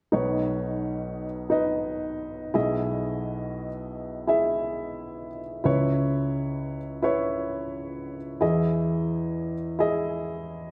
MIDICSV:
0, 0, Header, 1, 2, 480
1, 0, Start_track
1, 0, Key_signature, 4, "major"
1, 0, Tempo, 690687
1, 92, Time_signature, 4, 2, 24, 8
1, 7443, End_track
2, 0, Start_track
2, 0, Title_t, "Upright piano"
2, 0, Program_c, 0, 0
2, 84, Note_on_c, 0, 63, 60
2, 90, Note_on_c, 0, 35, 54
2, 90, Note_on_c, 0, 47, 50
2, 90, Note_on_c, 0, 71, 53
2, 97, Note_on_c, 0, 73, 64
2, 243, Control_c, 0, 64, 127
2, 866, Note_off_c, 0, 63, 0
2, 869, Note_off_c, 0, 71, 0
2, 872, Note_off_c, 0, 73, 0
2, 1041, Note_on_c, 0, 63, 59
2, 1049, Note_on_c, 0, 71, 52
2, 1055, Note_on_c, 0, 75, 65
2, 1744, Note_off_c, 0, 35, 0
2, 1744, Note_off_c, 0, 47, 0
2, 1765, Note_off_c, 0, 75, 0
2, 1765, Note_on_c, 0, 64, 67
2, 1767, Note_off_c, 0, 63, 0
2, 1770, Note_on_c, 0, 68, 60
2, 1771, Note_off_c, 0, 71, 0
2, 1772, Note_on_c, 0, 35, 50
2, 1772, Note_on_c, 0, 47, 52
2, 1776, Note_on_c, 0, 75, 72
2, 1781, Control_c, 0, 64, 0
2, 1890, Control_c, 0, 64, 127
2, 2546, Note_off_c, 0, 64, 0
2, 2549, Note_off_c, 0, 68, 0
2, 2552, Note_off_c, 0, 75, 0
2, 2970, Note_on_c, 0, 64, 63
2, 2976, Note_on_c, 0, 68, 56
2, 2980, Note_on_c, 0, 76, 66
2, 3665, Note_off_c, 0, 35, 0
2, 3665, Note_off_c, 0, 47, 0
2, 3749, Note_off_c, 0, 64, 0
2, 3752, Note_off_c, 0, 68, 0
2, 3754, Note_off_c, 0, 76, 0
2, 3919, Note_on_c, 0, 64, 61
2, 3926, Note_on_c, 0, 49, 51
2, 3927, Note_on_c, 0, 71, 55
2, 3929, Note_on_c, 0, 37, 52
2, 3933, Note_on_c, 0, 73, 75
2, 3943, Control_c, 0, 64, 0
2, 4069, Control_c, 0, 64, 127
2, 4703, Note_off_c, 0, 64, 0
2, 4707, Note_off_c, 0, 71, 0
2, 4710, Note_off_c, 0, 73, 0
2, 4882, Note_on_c, 0, 64, 63
2, 4886, Note_on_c, 0, 71, 53
2, 4894, Note_on_c, 0, 73, 70
2, 5665, Note_off_c, 0, 64, 0
2, 5667, Note_off_c, 0, 71, 0
2, 5671, Note_off_c, 0, 73, 0
2, 5821, Note_off_c, 0, 49, 0
2, 5823, Note_off_c, 0, 37, 0
2, 5842, Note_on_c, 0, 64, 62
2, 5846, Note_on_c, 0, 40, 55
2, 5847, Note_on_c, 0, 68, 60
2, 5849, Note_on_c, 0, 52, 56
2, 5851, Note_on_c, 0, 75, 75
2, 5860, Control_c, 0, 64, 0
2, 5976, Control_c, 0, 64, 127
2, 6625, Note_off_c, 0, 64, 0
2, 6627, Note_off_c, 0, 68, 0
2, 6629, Note_off_c, 0, 75, 0
2, 6802, Note_on_c, 0, 64, 59
2, 6811, Note_on_c, 0, 68, 61
2, 6814, Note_on_c, 0, 75, 71
2, 7443, Note_off_c, 0, 40, 0
2, 7443, Note_off_c, 0, 52, 0
2, 7443, Note_off_c, 0, 64, 0
2, 7443, Note_off_c, 0, 68, 0
2, 7443, Note_off_c, 0, 75, 0
2, 7443, End_track
0, 0, End_of_file